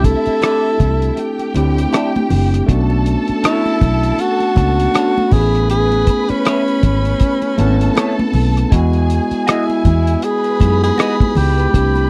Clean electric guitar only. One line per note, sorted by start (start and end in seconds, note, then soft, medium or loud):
0.42 0.58 E4 medium
0.42 0.58 A4 medium
0.42 0.58 D5 medium
1.93 2.08 E4 medium
1.93 2.09 A4 medium
1.93 2.09 D5 medium
3.43 3.59 D4 medium
3.43 3.60 A4 medium
3.43 3.60 C#5 medium
4.94 5.10 D4 medium
4.94 5.11 A4 medium
4.94 5.11 C#5 medium
6.45 6.61 E4 medium
6.45 6.62 G#4 medium
6.45 6.62 C#5 medium
7.96 8.12 E4 medium
7.96 8.12 G#4 medium
7.96 8.12 C#5 medium
9.47 9.63 F#4 medium
9.47 9.63 G#4 medium
9.47 9.63 D#5 medium
10.98 11.14 F#4 medium
10.98 11.14 G#4 medium
10.98 11.15 D#5 medium